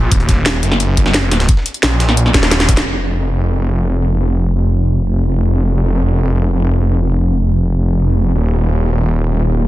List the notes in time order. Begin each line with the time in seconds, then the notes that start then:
Already playing: A#1
0.11 D#1, kick, closed hi-hat
0.20 closed hi-hat
0.29 kick, snare, closed hi-hat
0.46 snare, closed hi-hat
0.63 F#1, closed hi-hat
0.71 snare
0.80 closed hi-hat
0.97 kick, closed hi-hat
1.06 snare
1.14 snare, closed hi-hat
1.31 snare, closed hi-hat, open hi-hat
1.40 snare, closed hi-hat
1.49 kick, closed hi-hat
1.57 snare
1.66 closed hi-hat
1.74 closed hi-hat
1.83 A#1, snare, closed hi-hat
2.00 snare, closed hi-hat
2.09 snare
2.17 closed hi-hat
2.26 snare
2.34 D#1, kick, snare, closed hi-hat
2.43 snare, closed hi-hat
2.51 snare, closed hi-hat
2.60 snare, closed hi-hat
2.69 kick, snare, closed hi-hat, open hi-hat
2.77 snare, closed hi-hat
2.86 F1
8.34 D#1